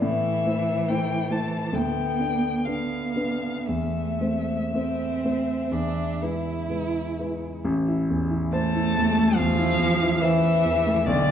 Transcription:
0.02 grand piano A2, cello E3, violin E5
0.45 grand piano A3 E4 C5
0.89 grand piano A3 E4 C5, violin G5
1.30 grand piano A3 E4 C5, violin A5
1.72 grand piano D2, violin G5
1.76 cello B3
2.20 grand piano B3 D4 B4
2.65 grand piano B3 D4 B4, cello B3, violin F5
3.15 grand piano B3 D4 B4
3.66 grand piano E2, cello A3, violin E5
4.21 grand piano A3 C4 C5
4.72 grand piano A3 C4 C5, cello C4
5.24 grand piano A3 C4 C5
5.71 grand piano E2, cello D4
6.21 grand piano G#3 E4 B4, cello E4
6.70 grand piano G#3 E4 B4
7.19 grand piano G#3 E4 B4
7.65 grand piano A1
7.88 grand piano E4
8.10 grand piano E2
8.30 grand piano E4
8.53 cello A3, grand piano C5, violin A5
8.75 grand piano E4
8.96 grand piano E2
9.18 grand piano A3
9.35 grand piano E2, cello F3, violin F5
9.59 grand piano E4
9.78 grand piano E2
10.02 grand piano E4
10.22 cello E3, grand piano C5, violin E5
10.42 grand piano E4
10.64 grand piano E2
10.86 grand piano A3
11.07 grand piano B1, cello D3, violin D5

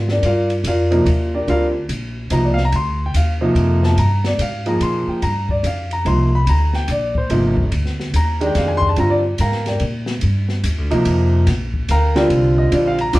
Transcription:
Already playing: upright bass G#2
0.08 grand piano D4 G4 A#4 D5, snare
0.22 upright bass G2, grand piano F4 D5 F5, ride
0.26 grand piano A#4
0.50 ride
0.64 upright bass F2, grand piano F4 A#4 D5 F5, hi-hat pedal, ride
0.91 grand piano C3 F3 A#3 D#4, ride
1.06 upright bass D#2, ride
1.34 grand piano D4 G4 A#4 D5
1.47 upright bass D2, grand piano D3 G3 C4 F4 A#4 D5 F5, ride
1.89 upright bass A#1, hi-hat pedal, ride
2.30 upright bass C2, grand piano C3 F3 A#3 D#4 A#5, hi-hat pedal, ride
2.44 grand piano D5
2.54 grand piano F5, snare
2.65 grand piano A#5
2.72 upright bass D2, grand piano C6, ride
3.06 grand piano G5
3.14 upright bass D#2, grand piano F5, hi-hat pedal, ride
3.41 grand piano C3 F3 A#3 D#4
3.55 upright bass F2, ride
3.83 grand piano A5, snare
3.97 upright bass G2, grand piano A#5, ride
4.24 grand piano D5, snare, ride
4.38 upright bass G#2, grand piano F5, hi-hat pedal, ride
4.66 grand piano F3 A#3 D#4 G#4 A#5, ride
4.80 upright bass A#2, grand piano C6, ride
5.07 grand piano G5, muted upright bass stroke
5.22 upright bass G2, grand piano A#5, ride
5.49 grand piano D5, kick
5.63 upright bass F2, grand piano F5, hi-hat pedal, ride
5.91 grand piano A#5, ride
6.05 upright bass C2, grand piano C3 F3 A#3 D#4 C6, ride
6.35 grand piano B5
6.47 upright bass D2, grand piano A#5, ride
6.73 grand piano G5, snare
6.88 upright bass A#1, grand piano D5, hi-hat pedal, ride
7.15 grand piano C5, kick
7.30 upright bass G1, grand piano C3 F3 A#3 D#4, ride
7.57 kick
7.71 upright bass D2, ride
7.86 snare
8.00 snare
8.13 upright bass D#2, grand piano A#5, hi-hat pedal, ride
8.41 grand piano D#3 G#3 D4 G4, ride
8.46 grand piano G5
8.55 upright bass F2, grand piano F5, snare, ride
8.68 grand piano G#5
8.77 grand piano C6
8.82 kick
8.89 grand piano A5
8.96 upright bass G2, grand piano D3 G3 C4 F4 A#5, ride
9.10 grand piano D5
9.38 upright bass G#2, grand piano A#4 F5 G5 A#5, hi-hat pedal, ride
9.52 snare
9.66 grand piano G4 A#4 D5 G5, snare, ride
9.80 upright bass A#2, ride
10.06 snare
10.21 upright bass G2, ride
10.49 snare
10.64 upright bass D#2, hi-hat pedal, ride
10.78 upright bass D2
10.91 upright bass A#1, grand piano C3 F3 A#3 D#4, ride
11.05 upright bass F2, ride
11.47 upright bass A#1, snare, ride
11.74 kick
11.89 upright bass D2, grand piano A#4 F5 G5 A#5, hi-hat pedal, ride
12.15 grand piano D3 G3 C4 F4 G4 A#4 D5 G5, snare, ride
12.30 upright bass C2, ride
12.58 grand piano D#5
12.71 upright bass A#1, grand piano D3 G3 C4 F4 D5, ride
12.87 grand piano F5
12.98 grand piano A#5, ride
13.13 upright bass D2, grand piano D3 G3 C4 F4 D6, snare, hi-hat pedal, ride

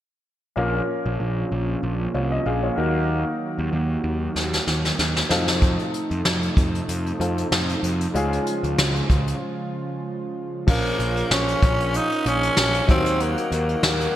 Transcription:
0.56 picked electric bass A#1, analog synth pad F3 A#3 C#4 F4, grand piano A#3 C#4 F4 A#4
1.06 picked electric bass A#1
1.20 picked electric bass A#1
1.52 picked electric bass A#1
1.83 picked electric bass A#1
2.14 picked electric bass C2, grand piano F4 C#5
2.32 grand piano D#5
2.46 picked electric bass A#1, grand piano G#4 F5
2.63 grand piano F4 C#5
2.76 picked electric bass D#2, analog synth pad D#3 F#3 F#4, grand piano A#3 D#4 F#4 A#4
3.59 picked electric bass D#2
3.73 picked electric bass D#2
4.04 picked electric bass D#2
4.36 picked electric bass D#2, snare
4.53 snare
4.67 picked electric bass D#2, snare
4.85 snare
4.99 picked electric bass D#2, snare
5.16 snare
5.29 picked electric bass F2, analog synth pad C3 F3 A3 D#4, grand piano C4 D#4 F4 A4, snare
5.48 snare
5.62 kick, closed hi-hat
5.79 closed hi-hat
5.94 closed hi-hat
6.11 picked electric bass F2, closed hi-hat
6.25 picked electric bass F2, snare
6.43 closed hi-hat
6.57 picked electric bass F2, kick, closed hi-hat
6.75 closed hi-hat
6.88 picked electric bass F2, closed hi-hat
7.06 closed hi-hat
7.20 picked electric bass F2, grand piano C4 D#4 F4 A4, closed hi-hat
7.38 closed hi-hat
7.51 picked electric bass F2, snare
7.69 closed hi-hat
7.83 picked electric bass F2, closed hi-hat
8.01 closed hi-hat
8.14 picked electric bass C#2, analog synth pad C#3 G#3 F4, grand piano G#3 C#4 F4 G#4, closed hi-hat
8.33 closed hi-hat
8.46 closed hi-hat
8.63 picked electric bass C#2, closed hi-hat
8.78 picked electric bass C#2, snare
8.96 closed hi-hat
9.10 picked electric bass C#2, kick, closed hi-hat
9.27 closed hi-hat
10.67 picked electric bass A#1, grand piano F3 A#3 C#4 F4, tenor saxophone A#3, analog synth pad C#4 F4 A#4 F5, kick, crash
10.85 closed hi-hat
10.99 picked electric bass A#1, closed hi-hat
11.16 closed hi-hat
11.31 picked electric bass A#1, tenor saxophone C#4, snare
11.48 closed hi-hat
11.63 picked electric bass A#1, kick, closed hi-hat
11.80 closed hi-hat
11.94 tenor saxophone D#4, closed hi-hat
12.11 closed hi-hat
12.26 picked electric bass A#1, tenor saxophone C#4, closed hi-hat
12.43 closed hi-hat
12.57 picked electric bass A#1, snare
12.74 closed hi-hat
12.88 picked electric bass D#2, grand piano D#3 F#3 A#3 D#4, tenor saxophone C4, analog synth pad D#4 F#4 F#5, kick, closed hi-hat
13.06 closed hi-hat
13.20 tenor saxophone A#3, closed hi-hat
13.37 closed hi-hat
13.52 picked electric bass D#2, tenor saxophone A#3, closed hi-hat
13.69 closed hi-hat
13.83 picked electric bass D#2, snare
14.01 closed hi-hat

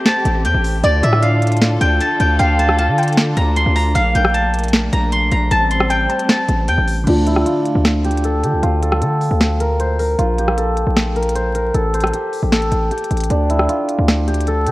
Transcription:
Already playing: string section A3 C4 G4, guzheng G5 C6
0.06 guzheng A5, snare, closed hi-hat
0.25 808-style bass A1, closed hi-hat
0.45 808-style bass E2, guzheng G5, closed hi-hat
0.54 808-style bass A1
0.64 open hi-hat
0.84 808-style bass D2, string section D3 D4 F4 A4, synth pluck D5, guzheng D5, closed hi-hat
1.03 808-style bass A2, guzheng E5, closed hi-hat
1.13 cross-stick
1.22 guzheng F5, closed hi-hat
1.42 closed hi-hat
1.47 closed hi-hat
1.52 closed hi-hat
1.57 closed hi-hat
1.62 snare, closed hi-hat
1.81 808-style bass D2, guzheng G5, closed hi-hat
2.01 guzheng A5, closed hi-hat
2.20 808-style bass D2, guzheng G5, closed hi-hat
2.39 808-style bass D2, guzheng F5, synth pluck G5, closed hi-hat
2.59 guzheng A5, closed hi-hat
2.69 cross-stick
2.78 synth pluck F5, guzheng A5, closed hi-hat
2.88 808-style bass D3
2.98 synth pluck G5, closed hi-hat
3.03 closed hi-hat
3.08 closed hi-hat
3.12 closed hi-hat
3.17 snare, closed hi-hat
3.37 808-style bass D2, guzheng A#5, closed hi-hat
3.56 guzheng C6, closed hi-hat
3.66 808-style bass D2
3.76 guzheng A#5, open hi-hat
3.95 808-style bass A#1, string section A3 A#3, guzheng F5, synth pluck F5, closed hi-hat
4.15 808-style bass A#1, guzheng G5, closed hi-hat
4.25 cross-stick
4.34 guzheng A5, closed hi-hat
4.54 closed hi-hat
4.59 closed hi-hat
4.64 closed hi-hat
4.68 closed hi-hat
4.73 snare, closed hi-hat
4.93 808-style bass A#1, guzheng A#5, closed hi-hat
5.12 guzheng C6, closed hi-hat
5.32 808-style bass A#1, guzheng A#5, closed hi-hat
5.51 808-style bass A1, string section G3 C4, synth pluck A5, guzheng A5, closed hi-hat
5.71 guzheng C6, closed hi-hat
5.80 cross-stick
5.90 synth pluck G5, guzheng G5, closed hi-hat
6.10 synth pluck A5, closed hi-hat
6.19 closed hi-hat
6.29 guzheng A5, snare, closed hi-hat
6.48 808-style bass A1, closed hi-hat
6.68 808-style bass E2, guzheng G5, closed hi-hat
6.78 808-style bass A1
6.87 open hi-hat
7.04 808-style bass D2, synth keys D3 A3, guzheng D4, closed hi-hat, crash
7.09 synth keys F4
7.27 guzheng E4, closed hi-hat
7.36 cross-stick
7.46 guzheng F4, closed hi-hat
7.65 closed hi-hat
7.75 808-style bass D2
7.85 cross-stick, snare, closed hi-hat
8.04 guzheng G4, closed hi-hat
8.11 closed hi-hat
8.17 closed hi-hat
8.24 guzheng A4, closed hi-hat
8.43 808-style bass D3, guzheng G4, closed hi-hat
8.53 808-style bass D2
8.63 808-style bass D2, guzheng F4, closed hi-hat
8.83 guzheng A4, closed hi-hat
8.92 cross-stick
9.02 808-style bass D3, guzheng A4, closed hi-hat
9.21 open hi-hat
9.31 808-style bass D2
9.41 cross-stick, snare, closed hi-hat
9.60 guzheng A#4, closed hi-hat
9.80 guzheng C5, closed hi-hat
9.99 guzheng A#4, open hi-hat
10.18 808-style bass A#1, guzheng F4, closed hi-hat
10.38 guzheng G4, closed hi-hat
10.48 cross-stick
10.57 guzheng A4, closed hi-hat
10.77 closed hi-hat
10.87 808-style bass A#1
10.97 cross-stick, snare, closed hi-hat
11.16 guzheng A#4, closed hi-hat
11.23 closed hi-hat
11.29 closed hi-hat
11.35 guzheng C5, closed hi-hat
11.55 guzheng A#4, closed hi-hat
11.75 808-style bass A1, guzheng A4, closed hi-hat
11.94 guzheng C5, closed hi-hat
12.00 cross-stick, closed hi-hat
12.07 closed hi-hat
12.13 guzheng G4, closed hi-hat
12.33 open hi-hat
12.43 808-style bass A1
12.52 guzheng A4, snare, closed hi-hat
12.62 closed hi-hat
12.72 808-style bass A1, closed hi-hat
12.91 guzheng G4, closed hi-hat
12.98 closed hi-hat
13.04 closed hi-hat
13.11 808-style bass A1, closed hi-hat
13.17 closed hi-hat
13.21 closed hi-hat
13.24 closed hi-hat
13.30 808-style bass D2, guzheng D4, closed hi-hat
13.50 guzheng E4, closed hi-hat
13.59 cross-stick
13.69 guzheng F4, closed hi-hat
13.89 closed hi-hat
13.99 808-style bass D2
14.08 cross-stick, snare, closed hi-hat
14.28 guzheng G4, closed hi-hat
14.34 closed hi-hat
14.41 closed hi-hat
14.47 guzheng A4, closed hi-hat
14.67 808-style bass D3, guzheng G4, closed hi-hat

